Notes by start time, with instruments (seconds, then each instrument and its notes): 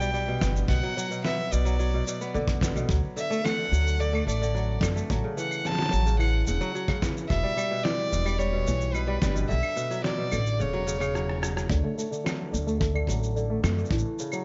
Already playing: upright bass B1, kora B2 B3, violin G5
0.01 kora G3, shaker
0.14 kora G3, shaker
0.28 kora B2
0.41 upright bass G1, kora B3, kick, snare, shaker
0.56 shaker
0.68 upright bass B1, kora B2, violin F#5, kick, shaker
0.83 kora F#3
0.97 kora F#3, shaker
1.11 kora B2, shaker
1.25 kora B3, violin E5, snare, shaker
1.52 upright bass B1, kora B2, violin D5, shaker
1.65 kora F#3, shaker
1.79 kora F#3, shaker
1.94 kora B2
2.07 kora B2, shaker
2.21 kora B3, shaker
2.34 upright bass B1, kora D3, shaker
2.48 kick
2.61 kora B3, kick, snare, shaker
2.76 kora B2, shaker
2.89 upright bass D2, kora F#3, kick, shaker
3.16 kora D3, violin E5, shaker
3.30 kora A3, shaker
3.44 kora A3, violin F#5, snare, claves, shaker
3.58 kora D3
3.72 upright bass D2, kora F#3, shaker
3.87 shaker
3.99 kora D3, violin D5, shaker
4.13 kora A3, claves
4.27 upright bass A1, kora A3, violin D5, shaker
4.42 kora D3, shaker
4.55 kora F#3, shaker
4.81 upright bass F#2, kora D3, kick, snare, claves, shaker
4.96 kora A3, shaker
5.10 upright bass A1, kora F#3, kick, shaker
5.24 kora C#3
5.37 kora E3, violin F#5, shaker
5.51 claves, shaker
5.65 kora C#3, violin A5, snare, shaker
5.69 snare
5.72 snare
5.75 kora F#3, snare
5.78 snare
5.82 snare
5.86 snare
5.89 upright bass A1, kora F#3, snare, shaker
6.06 kora C#3, shaker
6.19 kora E3, violin F#5, claves, shaker
6.47 upright bass E1, kora C#3, violin F#5, shaker
6.61 kora F#3, shaker
6.75 kora F#3, shaker
6.88 kora C#3, kick, claves
7.02 kora E3, kick, snare, shaker
7.17 shaker
7.29 upright bass E1, kora B2, violin E5, kick, shaker
7.43 kora G3
7.57 kora G3, claves, shaker
7.71 kora B2
7.84 kora E3, violin D5, snare, shaker
8.12 upright bass E1, kora B2, shaker
8.25 kora G3, claves, shaker
8.38 kora G3, violin C#5, shaker
8.53 kora B2
8.67 upright bass B1, kora E3, shaker
8.81 shaker
8.94 kora B2, violin B4, claves, shaker
9.07 kora G3
9.21 upright bass G1, kora G3, kick, snare, shaker
9.35 kora B2, shaker
9.48 upright bass B1, kora D3, violin E5, shaker
9.63 claves
9.76 kora B2, shaker
9.90 kora F#3, shaker
10.04 kora F#3, violin D5, snare, shaker
10.18 kora B2
10.31 upright bass A1, kora D3, claves, shaker
10.46 shaker
10.59 upright bass E1, kora C#3, violin C#5, shaker
10.73 kora F#3
10.87 kora C#3, shaker
11.00 kora C#3, claves, shaker
11.14 kora F#3, cross-stick, shaker
11.29 cross-stick
11.42 kora F#3, cross-stick, shaker
11.56 kora F#3, cross-stick, shaker
11.70 upright bass D2, kora D3, kick, shaker
11.84 kora A3
11.98 kora A3, shaker
12.11 kora D3, shaker
12.24 kora F#3, snare, claves, shaker
12.52 upright bass D2, kora D3, shaker
12.67 kora A3, shaker
12.80 kora A3, kick, shaker
12.94 kora D3, claves
13.07 upright bass A1, kora F#3, kick, shaker
13.23 shaker
13.36 kora D3, shaker
13.50 kora A3
13.63 upright bass F#2, kora A3, snare, claves, shaker
13.77 kora D3, shaker
13.85 shaker
13.91 upright bass A1, kora E3, kick, shaker
13.98 shaker
14.19 kora C#3, shaker
14.32 kora F#3, claves, shaker